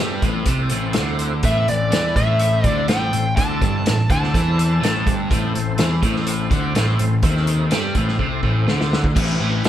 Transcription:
Already playing: tonewheel organ C4 A4 C5 E5
0.00 fingered electric bass G2, overdriven electric guitar G3
0.22 fingered electric bass A1, overdriven electric guitar A2, tonewheel organ C4 E4 A4 B4, kick, closed hi-hat
0.46 fingered electric bass C2, overdriven electric guitar C3, kick, closed hi-hat
0.58 tonewheel organ C4 E4 A4 C5
0.69 fingered electric bass A1, overdriven electric guitar A2, closed hi-hat
0.93 overdriven electric guitar D3, snare, closed hi-hat
0.97 fingered electric bass D2
1.19 closed hi-hat
1.43 fingered electric bass A1, overdriven electric guitar A2, tonewheel organ C4 E4 A4 B4, lead electric guitar E5, kick, closed hi-hat
1.68 fingered electric bass A1, overdriven electric guitar A2, lead electric guitar D5, closed hi-hat
1.91 fingered electric bass E2, overdriven electric guitar E3, snare, closed hi-hat
2.16 fingered electric bass A1, overdriven electric guitar A2, tonewheel organ C4 E4 A4 C5, lead electric guitar E5, kick, closed hi-hat
2.39 closed hi-hat
2.51 tonewheel organ C4 E4 A4 C5
2.64 fingered electric bass D2, overdriven electric guitar D3, lead electric guitar D5, kick, closed hi-hat
2.88 fingered electric bass A1, overdriven electric guitar A2, lead electric guitar G5, snare, closed hi-hat
3.13 fingered electric bass A1, overdriven electric guitar A2, closed hi-hat
3.36 fingered electric bass D2, overdriven electric guitar D3, tonewheel organ C4 E4 A4 D5, lead electric guitar A5, kick, closed hi-hat
3.61 fingered electric bass G1, overdriven electric guitar G2, kick, closed hi-hat
3.86 fingered electric bass A1, overdriven electric guitar A2, snare, closed hi-hat
4.10 fingered electric bass D2, overdriven electric guitar D3, tonewheel organ C4 E4 A4 C5, lead electric guitar A5, kick, closed hi-hat
4.23 snare
4.34 fingered electric bass E2, overdriven electric guitar E3, kick, closed hi-hat
4.46 tonewheel organ C4 E4 A4 C5
4.59 closed hi-hat
4.81 fingered electric bass A1, overdriven electric guitar A2, snare, closed hi-hat
5.05 fingered electric bass G1, overdriven electric guitar G2, kick, closed hi-hat
5.31 fingered electric bass A1, overdriven electric guitar A2, tonewheel organ C4 E4 A4 C5, kick, closed hi-hat
5.55 fingered electric bass A1, overdriven electric guitar A2, closed hi-hat
5.78 fingered electric bass E2, overdriven electric guitar E3, snare, closed hi-hat
6.02 fingered electric bass A1, overdriven electric guitar A2, tonewheel organ C4 E4 A4 C5, kick, closed hi-hat
6.16 snare
6.27 closed hi-hat
6.39 tonewheel organ C4 E4 A4 C5
6.50 fingered electric bass D2, overdriven electric guitar D3, kick, closed hi-hat
6.75 fingered electric bass A1, overdriven electric guitar A2, snare, closed hi-hat
6.99 fingered electric bass A1, overdriven electric guitar A2, closed hi-hat
7.22 fingered electric bass D#2, overdriven electric guitar D#3, tonewheel organ C4 A4 C5 E5, kick, closed hi-hat
7.37 snare
7.47 closed hi-hat
7.71 fingered electric bass G2, overdriven electric guitar G3, snare, closed hi-hat
7.95 fingered electric bass A1, overdriven electric guitar A2, tonewheel organ C4 E4 A4 C5, kick, closed hi-hat
8.08 snare
8.19 fingered electric bass C2, overdriven electric guitar C3, kick
8.31 tonewheel organ C4 E4 A4 C5
8.43 fingered electric bass A1, overdriven electric guitar A2, kick
8.67 fingered electric bass D2, overdriven electric guitar D3, snare
8.81 snare
8.93 snare
9.04 kick
9.15 fingered electric bass A1, overdriven electric guitar A2 E3, tonewheel organ C4 E4 G4 B4, kick, crash
9.39 fingered electric bass A1, overdriven electric guitar A2 E3
9.64 overdriven electric guitar A2 F#3, snare, open hi-hat

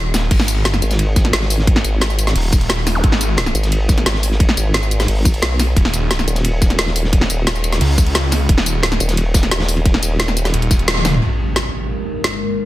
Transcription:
Already playing: detuned saw bass D#1
0.14 detuned saw bass D#1, snare, open hi-hat, ride, tambourine
0.31 detuned saw bass G#1, kick, closed hi-hat, crash, ride
0.40 snare
0.48 closed hi-hat, ride, tambourine
0.65 snare, closed hi-hat, ride, tambourine
0.74 snare, tambourine
0.82 wobble bass G#1, closed hi-hat, ride, tambourine
0.91 snare, closed hi-hat, tambourine
0.99 closed hi-hat, ride
1.16 kick, snare, closed hi-hat, ride, tambourine
1.25 snare, closed hi-hat
1.33 wobble bass G#1, snare, closed hi-hat, ride
1.41 snare
1.50 open hi-hat, ride, tambourine
1.59 snare
1.67 kick, closed hi-hat, ride
1.76 snare
1.84 wobble bass G#1, closed hi-hat, ride, tambourine
2.01 snare, closed hi-hat, ride, tambourine
2.10 tambourine
2.19 closed hi-hat, ride, tambourine
2.27 snare, closed hi-hat, tambourine
2.36 detuned saw bass D#1, closed hi-hat, open hi-hat
2.52 kick, closed hi-hat, ride, tambourine
2.61 closed hi-hat
2.69 detuned saw bass D#1, snare, closed hi-hat, ride
2.87 snare, open hi-hat, ride, tambourine
2.95 zap
3.04 detuned saw bass G#1, kick, closed hi-hat, ride
3.12 snare
3.21 closed hi-hat, ride, tambourine
3.37 snare, closed hi-hat, ride, tambourine
3.46 snare, tambourine
3.55 wobble bass G#1, closed hi-hat, ride, tambourine
3.63 snare, closed hi-hat, tambourine
3.72 closed hi-hat, ride
3.89 kick, snare, closed hi-hat, ride, tambourine
3.98 snare, closed hi-hat
4.06 wobble bass G#1, snare, closed hi-hat, ride
4.14 snare
4.23 open hi-hat, ride, tambourine
4.31 snare
4.40 kick, closed hi-hat, ride
4.49 snare
4.57 wobble bass G#1, closed hi-hat, ride, tambourine
4.74 snare, closed hi-hat, ride, tambourine
4.83 tambourine
4.91 closed hi-hat, ride, tambourine
5.00 snare, closed hi-hat, tambourine
5.08 wobble bass G#1, closed hi-hat, open hi-hat
5.25 kick, closed hi-hat, ride, tambourine
5.34 closed hi-hat
5.42 wobble bass B1, snare, closed hi-hat, ride
5.60 snare, open hi-hat, ride, tambourine
5.76 detuned saw bass D#1, kick, closed hi-hat, ride
5.85 snare
5.93 closed hi-hat, ride, tambourine
6.11 snare, closed hi-hat, ride, tambourine
6.19 snare, tambourine
6.27 wobble bass D#1, closed hi-hat, ride, tambourine
6.35 snare, closed hi-hat, tambourine
6.44 closed hi-hat, ride
6.62 kick, snare, closed hi-hat, ride, tambourine
6.70 snare, closed hi-hat
6.78 wobble bass D#1, snare, closed hi-hat, ride
6.87 snare
6.96 open hi-hat, ride, tambourine
7.04 snare
7.13 kick, closed hi-hat, ride
7.21 snare
7.30 wobble bass D#1, closed hi-hat, ride, tambourine
7.47 snare, closed hi-hat, ride, tambourine
7.55 tambourine
7.64 closed hi-hat, ride, tambourine
7.72 snare, closed hi-hat, tambourine
7.81 detuned saw bass C#2, closed hi-hat, open hi-hat
7.98 kick, closed hi-hat, ride, tambourine
8.07 closed hi-hat
8.15 detuned saw bass C#2, snare, closed hi-hat, ride
8.31 snare, open hi-hat, ride, tambourine
8.49 detuned saw bass D#1, kick, closed hi-hat, ride
8.58 snare
8.66 closed hi-hat, ride, tambourine
8.83 snare, closed hi-hat, ride, tambourine
8.92 snare, tambourine
9.00 wobble bass D#1, closed hi-hat, ride, tambourine
9.09 snare, closed hi-hat, tambourine
9.17 closed hi-hat, ride
9.34 kick, snare, closed hi-hat, ride, tambourine
9.43 snare, closed hi-hat
9.51 wobble bass D#1, snare, closed hi-hat
9.60 snare, ride
9.69 open hi-hat, tambourine
9.77 ride
9.86 kick, closed hi-hat, ride
9.94 snare
10.03 wobble bass D#1, closed hi-hat, ride, tambourine
10.19 snare, closed hi-hat, ride, tambourine
10.28 snare, tambourine
10.37 closed hi-hat, ride, tambourine
10.45 snare, closed hi-hat, tambourine
10.54 detuned saw bass D#1, closed hi-hat, ride
10.62 closed hi-hat
10.71 kick, snare, closed hi-hat, ride, tambourine
10.79 closed hi-hat
10.88 snare, closed hi-hat, ride
10.96 snare, high tom
11.05 detuned saw bass D#1, snare, open hi-hat, mid tom, ride, tambourine
11.13 mid tom, ride
11.22 analog synth pad G#3 D#4 A#4, impact
11.56 snare
12.24 snare

